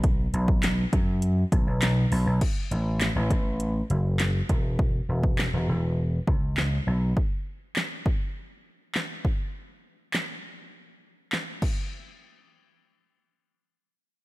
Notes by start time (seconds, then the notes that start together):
Already playing: B1
0.04 kick, closed hi-hat
0.33 B1, closed hi-hat
0.48 kick
0.63 snare, clap, closed hi-hat
0.93 F#2, kick, closed hi-hat
1.22 closed hi-hat
1.52 B1, kick, closed hi-hat
1.67 B1
1.82 snare, clap, closed hi-hat
2.12 B1, open hi-hat
2.27 B1
2.41 kick, closed hi-hat, crash
2.71 A1, closed hi-hat
3.01 snare, clap, closed hi-hat
3.16 A1
3.30 A1, kick, closed hi-hat
3.60 closed hi-hat
3.90 F#1, closed hi-hat
4.20 snare, clap, closed hi-hat
4.49 E1, kick, closed hi-hat
4.79 kick
5.09 E1
5.23 kick
5.38 snare, clap
5.53 E1
5.68 E1
6.27 C#2, kick
6.57 snare, clap
6.87 B1
7.17 kick
7.76 snare, clap
8.06 kick
8.95 snare, clap
9.25 kick
10.14 snare, clap
11.32 snare, clap
11.62 kick, crash